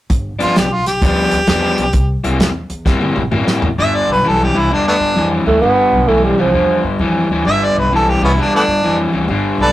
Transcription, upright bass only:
0.10 G1
0.40 G1
0.56 B1
0.86 B1
1.01 D2
1.32 D2
1.48 E2
1.78 B1
1.93 C2
2.23 C2
2.39 E2
2.70 E2
2.86 G2
3.17 G2
3.32 A2
3.62 A1
3.78 G1
4.09 B1
4.25 B1
4.54 C2
4.70 E2
5.00 G2
5.16 F2
5.46 D2
5.63 G1
5.92 B1
6.08 B1
6.38 C2
6.53 E2
6.84 G2
6.99 F2
7.29 D2
7.45 G1
7.75 B1
7.91 B1
8.21 C2
8.37 E2
8.68 G2
8.84 F2
9.12 D2
9.28 G1
9.58 B1

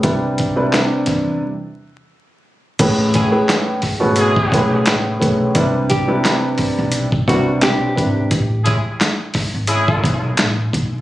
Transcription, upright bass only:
0.04 C2
1.08 E2
2.80 A1
4.03 G#1
4.52 B1
4.87 A1
5.22 B1
5.56 C2
6.78 B1
7.28 C2
7.63 B1
7.98 G#1
8.31 A1
9.54 G#1
10.04 B1
10.39 A1
10.74 B1

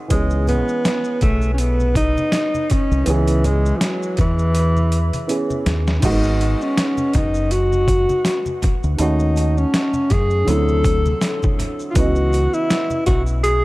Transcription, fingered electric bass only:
0.11 C#2
1.23 B1
2.91 C2
3.07 C#2
4.19 E2
5.66 D#2
6.03 G#1
7.15 F#1
8.84 D2
8.99 D#2
10.12 F#2
10.48 D2
11.96 C#2
13.08 B1

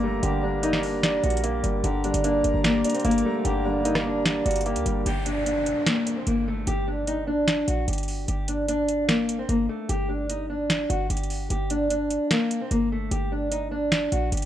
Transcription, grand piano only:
Already playing: D3 G3 A#3 D4 D5
0.03 G3
0.22 D3
0.43 G3
0.63 A#3
1.04 D5
1.24 D4
1.44 A#3
1.63 G3
1.84 D3
2.04 G3
2.24 A#3
2.64 D5
2.85 D4
3.05 A#3
3.25 G3
3.45 D3
3.65 G3
3.85 A#3
4.25 D5
4.46 D4
4.66 A#3
4.85 G3

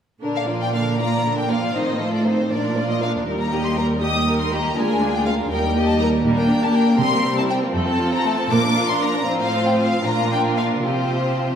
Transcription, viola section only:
0.22 D3 D4
0.48 F3 A#3
0.74 D3 D4
0.99 F3 A#3
1.25 D3 D4
1.50 F3 A#3
1.75 D#3 C4
2.00 F3 A3
2.26 D#3 C4
2.51 F3 D4
2.77 A#3 F4
3.02 F3 D4
3.27 G3 D#4
3.51 A#3 G4
3.76 G3 D#4
4.02 A#3 G4
4.27 G3 D#4
4.51 A#3 G4
4.75 G#3 F4
5.00 A#3 D4
5.24 G#3 F4
5.50 G3 D#4
5.74 A#3 G4
5.99 G3 D#4
6.24 A#3 D4
6.99 G3 C4
7.74 F3
8.50 D4
9.25 F3 C4
10.04 F3 D4
10.85 F3 C4

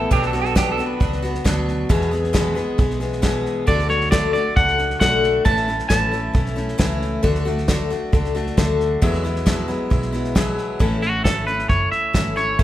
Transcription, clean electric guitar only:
3.68 D5
3.90 C#5
4.11 D5
4.33 D5
4.56 F#5
5.00 F#5
5.45 A5
5.89 A5
11.03 F#4
11.24 A4
11.47 B4
11.69 C#5
11.92 E5
12.37 C#5

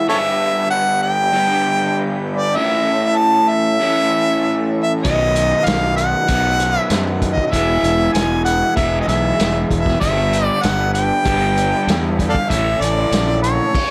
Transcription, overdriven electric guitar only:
0.08 G2 D3 G3 B3 D4
1.33 G2 D3 G3 B3 D4
2.56 A2 E3 A3 C#4 E4
3.79 A2 E3 A3 C#4 E4
5.03 B2 D#3 F#3 B3 D#4
6.28 B2 D#3 F#3 B3 D#4
7.51 E3 G#3 B3 E4
8.76 E3 G#3 B3 E4
10.00 G2 D3 G3 B3 D4
11.24 G2 D3 G3 B3 D4
12.49 A2 E3 A3 C#4 E4

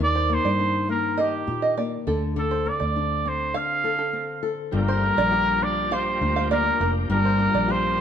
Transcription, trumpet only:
0.04 D5
0.33 C5
0.90 A#4
1.20 G4
2.39 A4
2.68 D5
3.28 C5
3.57 F5
4.74 A#4
5.63 D5
5.93 C5
6.51 A#4
7.12 A#4
7.71 C5

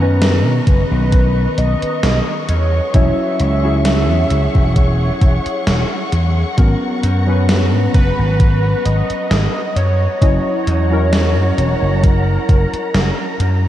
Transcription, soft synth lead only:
0.67 B4
1.58 D#5
2.49 C#5
2.94 E5
4.76 C#5
7.94 B4
8.85 D#5
9.76 C#5
10.22 C#5
12.03 A#4

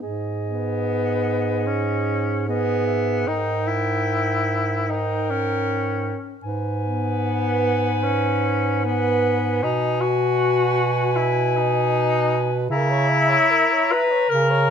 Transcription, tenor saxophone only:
0.46 B3
1.67 C#4
2.49 B3
3.28 D#4
3.67 E4
4.90 D#4
5.30 C#4
6.84 B3
8.04 C#4
8.85 B3
9.63 D#4
10.01 F#4
11.16 E4
11.56 D#4
12.70 E4
13.91 B4
14.29 A#4

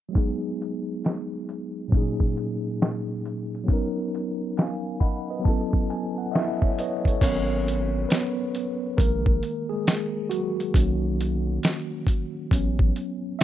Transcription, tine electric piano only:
0.09 F#3 G#3
0.13 B3 D#4
0.18 G#4
1.88 A#2 F#3 A#3
1.93 C#4 D#4 G#4
3.64 F#3 B3
3.68 C#4 D#4
3.73 A#4
4.58 F5 G#5
5.00 D#5 F#5 B5
5.30 B4 D#5
5.39 F#3 B3
5.44 C#4 E4 A5
5.49 A4
5.90 G#5
6.18 F#5
6.32 E4 D#5 E5 F#5
6.62 C#5 E5
6.79 B4 C#5 D#5
7.07 A4 C#5
7.21 F#3 B3 C#4 A#4 C#5
8.09 B3 B4
8.97 D#3 G#3 A#3 A#4
9.69 G#3 G#4
10.30 F#3 F#4
10.74 D#3 A#3 C#4
12.51 F#3 B3 C#4
13.39 E5

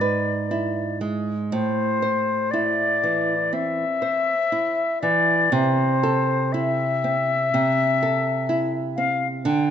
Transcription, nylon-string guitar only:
Already playing: G#2
0.01 B4
0.51 E4
1.01 G#3
1.52 A2
2.02 C5
2.53 E4
3.03 E3
3.53 C4
4.02 C5
4.52 E4
5.03 E3
5.52 C3
6.03 A4
6.54 E4
7.04 C4
7.54 C3
8.03 A4
8.49 E4
8.98 C4
9.45 D3

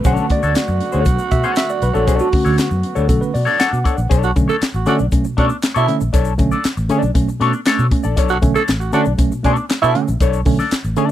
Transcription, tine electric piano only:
0.04 D3 A3 C#4 F#5
0.32 D5
1.31 E5
1.44 F#5
1.57 E5
1.70 D5
1.83 B4
1.96 A4
2.21 F#4
2.33 D3 A3 C#4
3.09 D3 A3 C#4 A4
3.21 B4
3.34 D5
3.60 F#5
4.11 B2
4.36 D3 A3 C#4
4.49 A3 C#4
4.86 D3 A3 C#4
5.12 A3 C#4
5.25 B2
5.38 A3 C#4
5.63 A3 C#4
5.76 B2
5.88 D3 A3 C#4
6.14 B2
6.38 D3 A3 C#4
6.52 A3 C#4
6.89 D3 A3 C#4
7.14 A3 C#4
7.27 B2
7.40 A3 C#4
7.66 A3 C#4
7.79 B2
7.91 A3 C#4
8.16 B2
8.41 D3 A3 C#4
8.55 A3 C#4
8.93 D3 A3 C#4
9.18 A3 C#4
9.31 B2
9.43 A3 C#4
9.69 A3 C#4
9.82 B2
9.95 D3 A3 C#4
10.21 B2
10.46 D3 A3 C#4
10.59 A3 C#4
10.96 D3 A3 C#4

